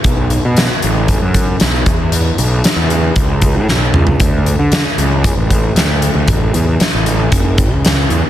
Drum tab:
HH |x-x-x-x-x-x-x-x-|x-x-x-x-x-x-----|x-x-x-x-x-x-x-x-|x-x-x-x-x-x-x-x-|
SD |----o-------o---|----o-------o---|----o-------o---|----o-------o---|
T2 |----------------|--------------o-|----------------|----------------|
FT |----------------|---------------o|----------------|----------------|
BD |o-------o-o---o-|--------o-o-----|o-------o-o-----|o-------o-o-----|